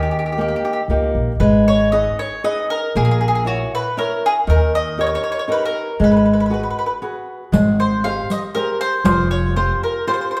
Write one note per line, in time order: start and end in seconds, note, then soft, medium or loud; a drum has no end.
0.00 0.53 D#2 medium
0.00 0.37 D#3 medium
0.00 0.10 G4 soft
0.11 0.18 G4 soft
0.19 0.25 G4 soft
0.26 0.31 G4 soft
0.32 0.40 G4 soft
0.38 0.79 A#3 soft
0.38 0.80 D#4 soft
0.38 0.80 G4 soft
0.38 0.47 G4 soft
0.48 0.55 G4 soft
0.56 0.64 G4 soft
0.65 0.72 G4 soft
0.73 0.79 G4 soft
0.88 1.13 C#2 medium
0.88 1.31 A#3 soft
0.88 1.32 D#4 soft
0.88 1.32 G4 soft
1.15 1.38 A#1 medium
1.40 2.07 G#1 medium
1.40 1.91 G#3 medium
1.40 1.66 B4 medium
1.68 1.91 C#5 medium
1.92 2.34 D#4 soft
1.92 2.34 G#4 soft
1.92 2.34 B4 soft
1.92 2.17 D#5 medium
2.19 2.42 C#5 medium
2.44 2.85 D#4 soft
2.44 2.85 G#4 soft
2.44 2.85 B4 soft
2.44 2.69 D#5 medium
2.70 2.93 A#4 medium
2.95 3.62 A#1 medium
2.95 3.45 A#3 medium
2.95 3.04 G#4 medium
3.05 3.10 G#4 medium
3.11 3.19 G#4 medium
3.21 3.27 G#4 medium
3.28 3.34 G#4 medium
3.35 3.42 G#4 medium
3.45 3.86 E4 soft
3.45 3.71 F#4 medium
3.45 3.87 A#4 soft
3.45 3.87 C#5 soft
3.75 3.97 B4 medium
3.97 4.38 E4 soft
3.97 4.38 A#4 soft
3.97 4.25 A#4 medium
3.97 4.38 C#5 medium
4.26 4.32 G#4 medium
4.47 5.14 D#2 medium
4.47 4.97 D#3 medium
4.47 4.75 A#4 medium
4.75 5.00 D#5 medium
4.98 5.39 D#4 soft
4.98 5.39 G4 soft
4.98 5.39 A#4 medium
4.98 5.05 C#5 medium
5.07 5.14 C#5 medium
5.15 5.22 C#5 medium
5.24 5.30 C#5 medium
5.32 5.37 C#5 medium
5.39 5.45 C#5 medium
5.48 5.89 D#4 soft
5.48 5.89 G4 soft
5.48 5.90 A#4 medium
5.52 5.63 B4 medium
5.65 5.99 A#4 medium
6.00 6.66 G#1 medium
6.00 6.49 G#3 medium
6.04 6.09 B4 medium
6.12 6.15 B4 soft
6.17 6.23 B4 soft
6.25 6.31 B4 soft
6.33 6.39 B4 soft
6.40 6.45 B4 soft
6.46 6.52 B4 soft
6.50 6.92 F#4 soft
6.50 6.92 G#4 soft
6.50 6.92 B4 soft
6.50 6.60 B4 soft
6.63 6.69 B4 soft
6.70 6.77 B4 soft
6.79 6.84 B4 soft
6.86 6.92 B4 soft
7.02 7.43 F#4 soft
7.02 7.43 G#4 soft
7.02 7.44 B4 soft
7.52 8.19 G#1 loud
7.52 8.02 G#3 medium
7.52 riq medium
7.80 8.03 C5 medium
8.04 8.45 G4 soft
8.04 8.45 G#4 soft
8.04 8.46 C5 soft
8.04 8.29 F5 medium
8.30 8.38 D#5 medium
8.30 riq soft
8.55 8.96 G4 soft
8.55 8.96 G#4 soft
8.55 8.79 A#4 medium
8.55 8.96 C5 soft
8.55 riq soft
8.81 9.04 C5 medium
9.04 9.71 F1 medium
9.04 9.54 F3 medium
9.04 9.30 C5 medium
9.04 riq medium
9.31 9.54 C#5 medium
9.56 9.97 F4 soft
9.56 9.97 G4 soft
9.56 9.81 C5 medium
9.56 9.97 C5 soft
9.83 10.06 A#4 medium
10.07 10.40 F4 medium
10.07 10.40 G4 soft
10.07 10.12 C5 medium
10.07 10.40 C5 soft
10.07 riq soft
10.14 10.20 C5 medium
10.21 10.29 C5 soft
10.31 10.35 C5 medium
10.37 10.40 C5 medium